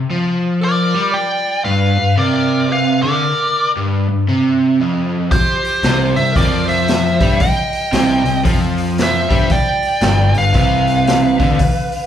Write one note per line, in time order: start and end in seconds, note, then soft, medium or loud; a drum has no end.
0.10 0.94 F3 medium
0.61 1.10 A#4 medium
0.61 1.17 D5 medium
0.94 1.14 G3 medium
1.12 1.62 D5 medium
1.12 1.63 G5 loud
1.65 1.97 G2 medium
1.65 2.14 B4 medium
1.65 2.19 F5 medium
1.99 2.15 G2 medium
2.18 3.02 C3 loud
2.18 2.68 A#4 medium
2.18 2.72 D5 medium
2.70 3.01 B4 medium
2.70 3.02 F5 medium
3.03 3.22 D3 medium
3.03 3.72 A#4 medium
3.03 3.71 D5 medium
3.77 4.08 G2 medium
4.09 4.24 G2 medium
4.28 4.79 C3 medium
4.81 5.32 F2 medium
5.31 6.12 G4 medium
5.31 6.19 C5 medium
5.31 kick loud
5.31 open hi-hat medium
5.65 open hi-hat soft
5.83 6.14 C2 medium
5.83 6.16 C3 medium
5.83 snare loud
5.83 open hi-hat medium
6.15 6.34 C2 medium
6.15 6.32 C5 medium
6.15 6.37 E5 medium
6.15 open hi-hat soft
6.19 6.33 C3 medium
6.32 7.17 F2 medium
6.32 6.64 A#4 medium
6.32 kick medium
6.32 open hi-hat medium
6.37 7.21 F3 loud
6.37 6.67 D5 medium
6.65 7.35 C5 medium
6.65 7.43 E5 medium
6.65 open hi-hat soft
6.88 snare loud
6.88 open hi-hat medium
7.20 7.39 G2 medium
7.20 7.40 G3 medium
7.20 kick medium
7.20 open hi-hat soft
7.37 8.39 D#5 medium
7.37 kick medium
7.37 open hi-hat medium
7.41 8.41 G5 medium
7.73 open hi-hat soft
7.93 8.23 C2 medium
7.93 8.24 C3 medium
7.93 snare loud
7.93 open hi-hat medium
8.25 8.43 C2 medium
8.25 8.41 C3 medium
8.25 open hi-hat soft
8.44 9.26 F2 medium
8.44 9.29 F3 loud
8.44 kick medium
8.44 open hi-hat medium
8.78 open hi-hat soft
8.98 9.48 C5 medium
8.98 snare loud
8.98 open hi-hat medium
9.03 9.54 E5 medium
9.29 9.48 G2 medium
9.29 9.49 G3 loud
9.29 kick medium
9.29 open hi-hat soft
9.50 10.32 D5 medium
9.50 10.38 G5 medium
9.50 kick medium
9.50 open hi-hat medium
9.83 open hi-hat soft
10.01 10.32 G1 medium
10.01 10.33 G2 medium
10.01 snare loud
10.01 open hi-hat medium
10.34 10.53 G1 medium
10.34 10.50 G2 medium
10.34 12.06 B4 medium
10.34 12.06 F5 medium
10.34 open hi-hat soft
10.54 11.36 C2 medium
10.54 11.38 C3 loud
10.54 kick medium
10.54 open hi-hat medium
10.87 open hi-hat soft
11.07 snare loud
11.07 open hi-hat medium
11.39 11.58 D2 medium
11.39 11.58 D3 medium
11.39 kick medium
11.39 open hi-hat soft
11.59 kick loud
11.59 open hi-hat medium
11.92 open hi-hat soft